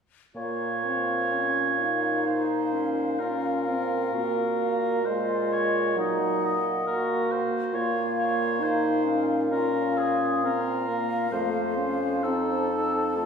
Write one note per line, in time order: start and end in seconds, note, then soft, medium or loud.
0.35 4.09 A#2 soft
0.35 0.81 A#3 soft
0.35 2.28 F4 soft
0.35 2.22 C#5 soft
0.35 1.29 F5 soft
0.85 1.35 C4 soft
1.33 1.78 C#4 soft
1.33 5.01 F5 soft
1.79 3.21 D#4 soft
2.26 2.74 D#4 soft
2.26 3.21 C5 soft
2.73 3.21 C#4 soft
3.19 3.70 C#4 soft
3.19 4.15 F4 soft
3.19 5.07 A#4 soft
3.68 4.14 C4 soft
4.13 7.43 A#2 soft
4.13 5.04 A#3 soft
4.13 5.05 F#4 soft
5.05 5.98 G#3 soft
5.05 5.96 F4 soft
5.05 5.55 C5 soft
5.05 5.99 D#5 soft
5.53 5.98 C#5 soft
5.96 6.59 F#3 soft
5.96 6.58 D#4 soft
5.96 6.41 D#5 soft
5.96 7.47 F#5 soft
6.44 6.86 D#5 soft
6.86 7.69 A#3 soft
6.86 7.75 F#4 soft
6.86 7.33 A#4 soft
7.31 7.76 C5 soft
7.73 11.28 A#2 medium
7.73 8.62 A#3 soft
7.73 8.62 F4 soft
7.73 8.05 C#5 soft
7.73 9.47 F5 soft
8.18 8.65 C#5 soft
8.61 9.07 D#4 soft
8.61 9.53 D#4 soft
8.61 9.25 C5 soft
9.05 9.52 C#4 soft
9.51 10.45 C#4 soft
9.51 11.31 F4 medium
9.51 9.99 A#4 soft
9.51 10.40 F5 soft
9.98 10.42 G#4 medium
10.42 10.89 C4 soft
10.42 11.34 A#4 soft
10.42 12.27 F5 soft
10.88 11.31 A#3 soft
11.32 13.26 F2 soft
11.32 11.79 A3 medium
11.32 12.25 F4 soft
11.32 12.24 C5 soft
11.77 12.26 C#4 soft
12.23 12.89 C4 soft
12.23 12.70 D#4 soft
12.23 13.15 A4 soft
12.23 13.26 A5 soft
12.71 13.17 D#4 soft
13.15 13.26 A3 soft
13.15 13.26 F4 soft
13.15 13.26 A4 soft